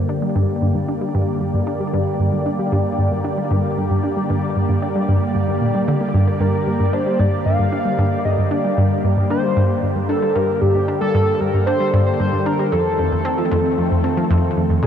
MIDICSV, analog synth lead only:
0, 0, Header, 1, 2, 480
1, 0, Start_track
1, 0, Key_signature, -2, "minor"
1, 0, Tempo, 526316
1, 84, Time_signature, 4, 2, 24, 8
1, 13560, End_track
2, 0, Start_track
2, 0, Title_t, "Analog synth lead"
2, 0, Program_c, 0, 81
2, 5844, Note_on_c, 0, 70, 93
2, 6324, Note_on_c, 0, 72, 97
2, 6337, Note_off_c, 0, 70, 0
2, 6561, Note_on_c, 0, 74, 95
2, 6575, Note_off_c, 0, 72, 0
2, 6795, Note_off_c, 0, 74, 0
2, 6801, Note_on_c, 0, 77, 115
2, 7523, Note_on_c, 0, 75, 97
2, 7537, Note_off_c, 0, 77, 0
2, 7763, Note_on_c, 0, 74, 90
2, 7777, Note_off_c, 0, 75, 0
2, 8244, Note_off_c, 0, 74, 0
2, 8485, Note_on_c, 0, 72, 113
2, 8931, Note_off_c, 0, 72, 0
2, 9201, Note_on_c, 0, 69, 90
2, 9440, Note_on_c, 0, 70, 90
2, 9453, Note_off_c, 0, 69, 0
2, 9678, Note_on_c, 0, 67, 96
2, 9692, Note_off_c, 0, 70, 0
2, 10036, Note_off_c, 0, 67, 0
2, 10041, Note_on_c, 0, 69, 95
2, 10400, Note_on_c, 0, 70, 97
2, 10414, Note_off_c, 0, 69, 0
2, 10632, Note_off_c, 0, 70, 0
2, 10638, Note_on_c, 0, 72, 110
2, 10975, Note_off_c, 0, 72, 0
2, 11001, Note_on_c, 0, 72, 108
2, 11361, Note_on_c, 0, 70, 97
2, 11375, Note_off_c, 0, 72, 0
2, 11592, Note_off_c, 0, 70, 0
2, 11597, Note_on_c, 0, 69, 101
2, 13004, Note_off_c, 0, 69, 0
2, 13527, Note_on_c, 0, 70, 101
2, 13560, Note_off_c, 0, 70, 0
2, 13560, End_track
0, 0, End_of_file